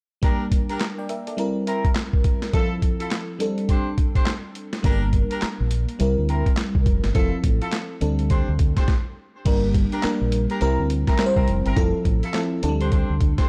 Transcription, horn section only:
0.22 0.43 D4 medium
0.22 0.43 G4 medium
0.22 0.43 A#4 medium
0.69 0.84 D4 medium
0.69 0.84 G4 medium
0.69 0.84 A#4 medium
1.67 1.87 C4 medium
1.67 1.87 E4 medium
1.67 1.87 A#4 medium
2.53 2.73 E4 medium
2.53 2.73 F4 medium
2.53 2.74 A4 medium
3.00 3.15 E4 medium
3.00 3.15 F4 medium
3.00 3.15 A4 medium
3.69 3.89 D4 medium
3.69 3.89 G4 medium
3.69 3.89 C5 medium
4.15 4.30 D4 medium
4.15 4.30 G4 medium
4.15 4.30 C5 medium
4.84 5.04 D4 medium
4.84 5.04 G4 medium
4.84 5.04 A#4 medium
5.31 5.46 D4 medium
5.31 5.46 G4 medium
5.31 5.46 A#4 medium
6.28 6.48 C4 medium
6.28 6.49 E4 medium
6.28 6.49 A#4 medium
7.15 7.35 E4 medium
7.15 7.35 F4 medium
7.15 7.35 A4 medium
7.61 7.76 E4 medium
7.61 7.76 F4 medium
7.61 7.76 A4 medium
8.30 8.50 D4 medium
8.30 8.50 G4 medium
8.30 8.51 C5 medium
8.76 8.91 D4 medium
8.76 8.92 G4 medium
8.76 8.92 C5 medium
9.92 10.07 D4 medium
9.92 10.07 G4 medium
9.92 10.07 A#4 medium
10.50 10.65 D4 medium
10.50 10.65 G4 medium
10.50 10.60 A#4 medium
10.61 10.81 C4 medium
10.61 10.81 E4 medium
10.61 10.81 A#4 medium
11.07 11.22 C4 medium
11.07 11.22 E4 medium
11.07 11.23 A#4 medium
11.36 11.51 C4 medium
11.36 11.51 E4 medium
11.36 11.51 A#4 medium
11.65 11.80 C4 medium
11.65 11.80 E4 medium
11.65 11.80 A#4 medium
12.23 12.38 E4 medium
12.23 12.38 F4 medium
12.23 12.38 A4 medium
12.80 12.90 D4 medium
12.80 12.91 G4 medium
12.80 12.91 C5 medium
12.91 13.12 D4 medium
12.91 13.12 G4 medium
12.91 13.12 C5 medium
13.38 13.49 D4 medium
13.38 13.49 G4 medium
13.38 13.49 C5 medium

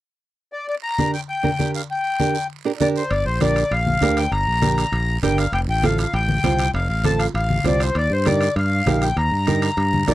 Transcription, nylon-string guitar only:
0.99 1.14 D4 medium
0.99 1.15 G4 medium
0.99 1.15 A#4 medium
1.43 1.49 D4 medium
1.43 1.49 G4 medium
1.43 1.49 A#4 medium
1.59 1.80 D4 medium
1.59 1.80 G4 medium
1.59 1.81 A#4 medium
2.20 2.36 D4 medium
2.20 2.36 G4 medium
2.20 2.36 A#4 medium
2.65 2.71 D4 medium
2.65 2.71 G4 medium
2.65 2.71 A#4 medium
2.80 3.02 D4 medium
2.80 3.02 G4 medium
2.80 3.02 A#4 medium
3.41 3.62 D4 medium
3.41 3.62 G4 medium
3.41 3.63 A#4 medium
4.02 4.23 D4 medium
4.02 4.23 G4 medium
4.02 4.23 A#4 medium
4.62 4.83 D4 medium
4.62 4.83 G4 medium
4.62 4.84 A#4 medium
5.23 5.44 D4 medium
5.23 5.44 G4 medium
5.23 5.45 A#4 medium
5.83 6.05 C4 medium
5.83 6.05 F4 medium
5.83 6.05 A4 medium
6.44 6.65 C4 medium
6.44 6.65 F4 medium
6.44 6.65 C5 medium
7.04 7.26 C4 medium
7.04 7.26 F4 medium
7.04 7.26 A4 medium
7.64 7.86 C4 medium
7.64 7.86 F4 medium
7.64 7.87 C5 medium
8.26 8.47 D#4 medium
8.26 8.47 G4 medium
8.26 8.48 A#4 medium
8.87 9.08 D#4 medium
8.87 9.08 G4 medium
8.87 9.08 A#4 medium
9.47 9.68 D#4 medium
9.47 9.69 G4 medium
9.47 9.69 A#4 medium
10.08 10.14 D#4 medium
10.08 10.14 G4 medium
10.08 10.14 A#4 medium

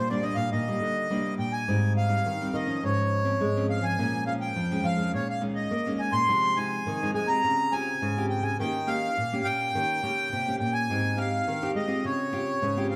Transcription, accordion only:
0.10 0.25 D5 medium
0.22 0.36 D#5 medium
0.35 0.50 F5 medium
0.52 1.35 D#5 medium
1.39 1.52 G5 medium
1.52 1.93 G#5 medium
1.97 2.56 F5 medium
2.54 2.84 D#5 medium
2.84 3.66 C#5 medium
3.70 3.85 F5 medium
3.83 4.24 G#5 loud
4.27 4.34 F5 medium
4.41 4.86 G5 medium
4.85 5.12 F5 loud
5.15 5.28 C#5 medium
5.30 5.42 F5 medium
5.55 6.01 D#5 medium
5.99 6.13 G#5 medium
6.12 6.58 C6 loud
6.57 7.11 G#5 loud
7.15 7.28 G#5 loud
7.28 7.73 A#5 loud
7.72 8.26 G#5 loud
8.30 8.44 G5 medium
8.43 8.57 G#5 medium
8.60 8.89 G5 loud
8.87 9.47 F5 medium
9.44 10.56 G5 loud
10.60 10.74 G5 medium
10.73 11.19 G#5 loud
11.17 11.72 F5 medium
11.76 12.05 D#5 medium
12.05 12.87 C#5 medium
12.90 12.96 F5 medium

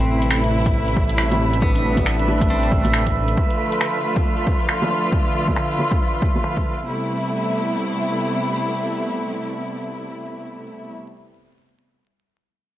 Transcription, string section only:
0.00 3.34 C3 medium
0.00 3.34 G3 medium
0.00 6.84 A3 medium
0.00 1.61 E4 medium
0.00 6.84 B4 medium
1.62 3.36 D4 medium
3.37 6.84 D3 medium
3.37 6.84 F3 medium
3.37 6.84 F4 medium
6.88 10.95 C3 medium
6.88 10.95 G3 medium
6.88 10.95 A3 medium
6.88 10.94 B3 medium
6.88 10.95 E4 medium

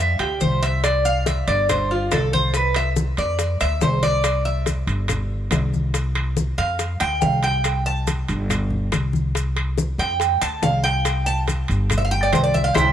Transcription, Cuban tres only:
0.00 0.19 E5 medium
0.20 0.41 G4 medium
0.41 0.62 C5 medium
0.63 0.83 E5 loud
0.84 1.05 D5 medium
1.05 1.26 F5 loud
1.26 1.47 E5 loud
1.48 1.68 D5 medium
1.69 1.90 C5 medium
1.91 2.11 F4 medium
2.12 2.33 A4 medium
2.33 2.54 C5 loud
2.55 2.75 B4 medium
2.76 2.89 E5 loud
3.18 3.58 D5 medium
3.61 3.81 E5 loud
3.82 4.03 C5 medium
4.03 4.42 D5 loud
4.45 4.66 E5 medium
6.58 6.98 F5 loud
7.00 7.21 G5 loud
7.22 7.43 F5 medium
7.44 7.83 G5 loud
7.86 8.07 A5 loud
9.99 10.39 G5 loud
10.42 10.62 A5 loud
10.63 10.83 F5 medium
10.84 11.23 G5 loud
11.26 11.39 A5 loud
11.98 12.04 E5 medium
12.05 12.11 F5 medium
12.11 12.22 G5 loud
12.23 12.33 D5 medium
12.33 12.43 C5 medium
12.44 12.54 D5 medium
12.54 12.64 E5 loud
12.64 12.75 F5 loud
12.74 12.89 C5 medium
12.74 12.89 E5 medium
12.74 12.89 G5 medium

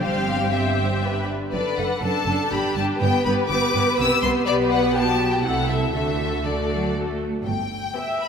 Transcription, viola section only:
0.02 0.52 C4 soft
0.02 0.52 C5 soft
0.53 1.02 C4 soft
0.53 1.02 C5 soft
1.03 1.33 D4 soft
1.03 1.33 B4 soft
1.53 1.76 D4 soft
1.53 1.76 A4 soft
1.77 2.01 D4 soft
1.77 2.01 A4 soft
2.02 2.26 D4 soft
2.02 2.26 A4 soft
2.27 2.51 D4 soft
2.27 2.51 A4 soft
2.52 2.75 D4 soft
2.52 2.75 G4 soft
2.76 3.00 D4 soft
2.76 2.99 G4 soft
3.01 3.24 B3 soft
3.01 3.24 G4 soft
3.25 3.48 B3 soft
3.25 3.48 G4 soft
3.49 3.72 B3 soft
3.49 3.73 G4 soft
3.73 3.97 B3 medium
3.73 3.97 G4 soft
3.98 4.21 B3 soft
3.98 4.20 G4 soft
4.22 4.45 B3 soft
4.22 4.45 G4 soft
4.46 5.40 B3 medium
4.46 4.92 G4 medium
4.95 5.44 F#4 soft
5.44 5.93 A3 soft
5.44 5.93 E4 soft
5.95 6.44 A3 soft
5.95 6.44 F#4 soft
6.45 7.24 A3 soft
6.45 7.24 F#4 soft
7.96 8.28 E5 medium

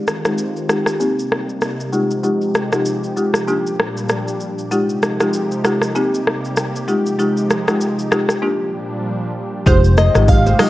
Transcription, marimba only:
0.00 0.21 G#3 medium
0.00 0.21 D#4 medium
0.00 0.21 F4 medium
0.00 0.21 G4 medium
0.25 0.66 G#3 medium
0.25 0.66 D#4 medium
0.25 0.66 F4 medium
0.25 0.67 G4 medium
0.69 0.98 G#3 medium
0.69 0.98 D#4 medium
0.69 0.98 F4 medium
0.69 0.99 G4 medium
1.00 1.93 A#3 medium
1.00 1.93 C4 medium
1.00 1.92 D#4 medium
1.00 1.92 G4 loud
1.93 2.22 G#3 medium
1.93 2.22 D#4 medium
1.93 2.22 F4 medium
1.93 2.22 G4 loud
2.24 2.69 G#3 medium
2.24 2.69 D#4 medium
2.24 2.69 F4 medium
2.24 2.69 G4 loud
2.73 3.14 G#3 medium
2.73 3.14 D#4 medium
2.73 3.14 F4 medium
2.73 3.14 G4 medium
3.17 3.46 G#3 medium
3.17 3.46 D#4 medium
3.17 3.46 F4 medium
3.17 3.46 G4 medium
3.47 4.63 A#3 medium
3.47 4.63 D4 medium
3.47 4.63 F4 medium
3.47 4.63 G4 medium
4.71 5.16 G#3 medium
4.71 5.16 D#4 medium
4.71 5.16 F4 medium
4.71 5.16 G4 medium
5.20 5.61 G#3 medium
5.20 5.61 D#4 medium
5.20 5.61 F4 medium
5.20 5.61 G4 medium
5.64 5.93 G#3 medium
5.64 5.93 D#4 medium
5.64 5.93 F4 medium
5.64 5.93 G4 medium
5.95 6.88 A#3 medium
5.95 6.88 C4 medium
5.95 6.87 D#4 medium
5.95 6.87 G4 loud
6.88 7.17 G#3 medium
6.88 7.17 D#4 medium
6.88 7.17 F4 medium
6.88 7.17 G4 loud
7.19 7.63 G#3 medium
7.19 7.64 D#4 medium
7.19 7.64 F4 medium
7.19 7.64 G4 medium
7.68 8.09 G#3 medium
7.68 8.09 D#4 medium
7.68 8.09 F4 medium
7.68 8.09 G4 medium
8.11 8.40 G#3 medium
8.11 8.41 D#4 medium
8.11 8.41 F4 medium
8.11 8.41 G4 medium
8.42 9.58 A#3 medium
8.42 9.58 D4 medium
8.42 9.58 F4 medium
8.42 9.58 G4 medium
9.66 10.11 G#3 medium
9.66 10.11 D#4 medium
9.66 10.11 F4 medium
9.66 10.11 G4 loud
10.15 10.56 G#3 medium
10.15 10.56 D#4 medium
10.15 10.56 F4 medium
10.15 10.56 G4 medium
10.59 10.70 G#3 medium
10.59 10.70 D#4 medium
10.59 10.70 F4 medium
10.59 10.70 G4 medium

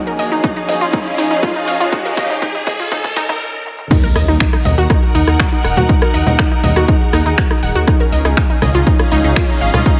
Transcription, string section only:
0.00 3.41 C#4 medium
0.00 0.88 D#4 medium
0.00 3.41 G#4 medium
0.00 0.65 A#4 medium
0.00 3.41 D#5 medium
0.21 3.41 F5 medium
3.91 9.40 D#4 medium
4.32 8.91 A#4 medium
4.53 7.88 F#5 medium
7.88 10.00 C#4 medium
8.02 10.00 G#4 medium
8.50 10.00 D#5 medium
8.65 10.00 F5 medium

